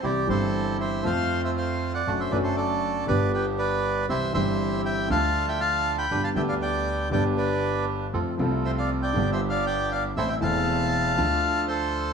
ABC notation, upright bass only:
X:1
M:4/4
L:1/8
Q:1/4=118
K:C
V:1 name="Upright bass" clef=bass
C,, G,,,3 F,,4 | ^F,,, F,,,3 G,,,4 | C,, G,,,3 D,,4 | G,,, D,,3 G,,,4 |
F,, C,,3 G,,,4 | A,,, E,,,3 D,,4 |]